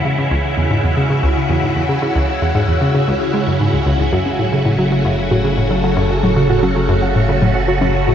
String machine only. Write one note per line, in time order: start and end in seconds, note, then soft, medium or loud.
0.00 8.15 C#3 medium
0.00 4.13 E3 medium
0.00 4.13 G#3 medium
0.00 5.55 E4 medium
0.00 8.15 F#4 medium
4.30 8.15 F#3 medium
4.71 8.15 A3 medium
5.63 8.15 A4 medium